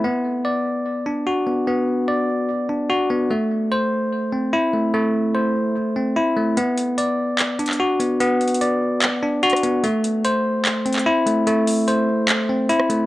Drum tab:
HH |------------------------------------------------|------------------------------------------------|------------------------------------------------|------------------------------------------------|
CP |------------------------------------------------|------------------------------------------------|------------------------------------------------|------------------------------------------------|
SD |------------------------------------------------|------------------------------------------------|------------------------------------------------|------------------------------------------------|

HH |x-----x-----x-----------x-----x-x-x-------x-----|x-----x-x-x-x-----------x-----------x-x-x-x-----|x-----x-----x-----------x-----x-x-x-------x-----|x-----o-----x-----------x-----------x-----x-----|
CP |------------------------x--------x--------------|------------------------x-----------------------|------------------------x--------x--------------|------------------------x-----------------------|
SD |------------------------------------------------|---------------------------------------r--------|------------------------------------------------|---------------------------------------r--------|